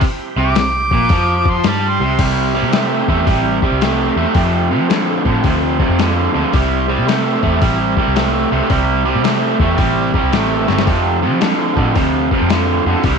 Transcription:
Already playing: tonewheel organ E4 G4 C5
0.01 kick, open hi-hat
0.36 picked electric bass C2, overdriven electric guitar C3, harmonica D6
0.55 overdriven electric guitar C3, snare, open hi-hat
0.91 picked electric bass A#1, overdriven electric guitar A#2, kick
1.09 picked electric bass F2, overdriven electric guitar F3, kick, open hi-hat
1.45 kick
1.50 harmonica C6
1.64 picked electric bass G2, overdriven electric guitar G3, snare, open hi-hat
1.69 harmonica A5
1.88 harmonica C6
2.00 picked electric bass C2, overdriven electric guitar C3
2.19 picked electric bass C2, overdriven electric guitar C3 G3, tonewheel organ G3 E4 C5, kick, open hi-hat, crash
2.55 overdriven electric guitar C3 G3
2.62 picked electric bass C3
2.73 overdriven electric guitar C3 A3, snare, open hi-hat
3.08 picked electric bass E2, overdriven electric guitar C3 A3, kick
3.27 picked electric bass A1, overdriven electric guitar C3 G3, kick, open hi-hat
3.62 overdriven electric guitar C3 G3, kick
3.71 picked electric bass C2
3.81 overdriven electric guitar C3 A3, snare, open hi-hat
4.16 picked electric bass E2, overdriven electric guitar C3 A3
4.35 picked electric bass F2, overdriven electric guitar F2 C3, tonewheel organ A3 F4 C5, kick, open hi-hat
4.71 overdriven electric guitar F2 C3
4.80 picked electric bass F3
4.90 overdriven electric guitar F2 D3, snare, open hi-hat
5.25 overdriven electric guitar F2 D3, picked electric bass A2, kick
5.44 picked electric bass D2, overdriven electric guitar F2 C3, kick, open hi-hat
5.79 overdriven electric guitar F2 C3, kick
5.89 picked electric bass F2
5.99 overdriven electric guitar F2 D3, snare, open hi-hat
6.34 picked electric bass D2, overdriven electric guitar F2 D3
6.52 picked electric bass C2, overdriven electric guitar C3 G3, tonewheel organ E4 C5, kick, open hi-hat
6.56 tonewheel organ G3
6.88 overdriven electric guitar C3 G3
6.99 picked electric bass C3
7.06 overdriven electric guitar C3 A3, snare, open hi-hat
7.42 picked electric bass E2, overdriven electric guitar C3 A3, kick
7.62 picked electric bass A1, overdriven electric guitar C3 G3, kick, open hi-hat
7.97 overdriven electric guitar C3 G3, kick
8.07 picked electric bass C2
8.16 overdriven electric guitar C3 A3, snare, open hi-hat
8.52 picked electric bass C2, overdriven electric guitar C3 A3
8.70 picked electric bass C2, overdriven electric guitar C3 G3, kick, open hi-hat
9.05 overdriven electric guitar C3 G3
9.15 picked electric bass C3
9.24 overdriven electric guitar C3 A3, snare, open hi-hat
9.60 picked electric bass E2, overdriven electric guitar C3 A3, kick
9.77 picked electric bass A1, overdriven electric guitar C3 G3, kick, open hi-hat
10.14 overdriven electric guitar C3 G3, kick
10.23 picked electric bass C2
10.33 picked electric bass A1, overdriven electric guitar C3 A3, snare, open hi-hat
10.68 picked electric bass G1, overdriven electric guitar C3 A3, snare
10.79 snare
10.85 overdriven electric guitar F2 C3, picked electric bass F2, tonewheel organ A3 F4 C5, kick, open hi-hat
11.23 overdriven electric guitar F2 C3
11.33 picked electric bass F3
11.41 overdriven electric guitar F2 D3, snare, open hi-hat
11.76 overdriven electric guitar F2 D3, picked electric bass A2, kick
11.96 picked electric bass D2, overdriven electric guitar F2 C3, kick, open hi-hat
12.31 overdriven electric guitar F2 C3, kick
12.42 picked electric bass F2
12.50 overdriven electric guitar F2 D3, snare, open hi-hat
12.86 picked electric bass F2, overdriven electric guitar F2 D3
13.04 picked electric bass C2, overdriven electric guitar C3 G3, tonewheel organ G3 E4 C5, kick, open hi-hat

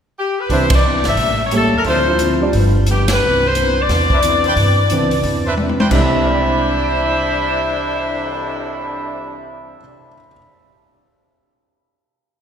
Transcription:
0.19 saxophone section G4
0.40 saxophone section B4
0.49 upright bass C2, hollow-body jazz guitar C3 E3 B3, grand piano E3 C4 D4 B4, trumpet section D4 B4 C5 E5, saxophone section C5, kick, open hi-hat
0.54 hollow-body jazz guitar D4
0.70 kick, ride
0.74 saxophone section D5
0.85 hollow-body jazz guitar C3 E3 B3 D4
1.04 upright bass G#1, snare, open hi-hat
1.08 saxophone section E5
1.17 upright bass A1, hollow-body jazz guitar A2 G3, kick, open hi-hat
1.21 hollow-body jazz guitar A#3 C#4
1.45 saxophone section C#5
1.51 hollow-body jazz guitar A2 G3 A#3, grand piano G3 A#3 C#4 A4, closed hi-hat
1.55 hollow-body jazz guitar C#4, saxophone section A4
1.73 upright bass D#2, saxophone section A#4
1.84 upright bass D2, hollow-body jazz guitar D3 F3, trumpet section D4 F4 C5 E5, kick, open hi-hat
1.89 hollow-body jazz guitar C4 E4, saxophone section C5
2.07 grand piano F3 D4 E4 C5
2.19 hollow-body jazz guitar D3 F3, closed hi-hat
2.23 hollow-body jazz guitar C4 E4
2.41 grand piano G3 D4 F4 D5
2.53 upright bass G1, hollow-body jazz guitar G2 F3 B3, kick, open hi-hat
2.57 hollow-body jazz guitar D4
2.86 hollow-body jazz guitar G2 F3 B3 D4, closed hi-hat
2.91 saxophone section G4
3.08 snare, ride
3.13 saxophone section B4
3.21 upright bass C2, hollow-body jazz guitar C3 E3 B3 D4
3.47 saxophone section C5
3.55 hollow-body jazz guitar C3 E3 B3 D4, closed hi-hat
3.81 saxophone section D5
3.89 upright bass E2, hollow-body jazz guitar C3 E3 B3 D4, kick, snare, open hi-hat
4.10 trumpet section D4 B4 C5 E5, kick
4.23 hollow-body jazz guitar C3 E3 B3 D4, closed hi-hat
4.44 trumpet section D4 B4 C5 G5, open hi-hat
4.56 upright bass G2, hollow-body jazz guitar C3 E3 B3 D4, kick, open hi-hat
4.90 upright bass C#2, hollow-body jazz guitar C3 E3 B3 D4, grand piano E3 C4 D4 B4, closed hi-hat
5.11 open hi-hat
5.23 upright bass E2, hollow-body jazz guitar C3 E3 B3 D4, kick, open hi-hat
5.45 trumpet section D4 B4 C5 E5
5.57 hollow-body jazz guitar C3 E3 B3 D4, high tom
5.69 high tom
5.79 trumpet section D4 B4 C5 G5, muted upright bass stroke, high tom
5.90 upright bass C2, hollow-body jazz guitar C3 E3, grand piano C3 C4 D4 E4 C5, saxophone section G3 D4 C5, trumpet section D4 E5 B5, kick, crash
5.95 hollow-body jazz guitar D4, saxophone section E4
6.12 cymbal swell
6.26 grand piano D5
6.34 grand piano G5
6.42 grand piano B5
6.52 grand piano D6
6.62 grand piano G6
6.72 grand piano B6
6.84 grand piano D7

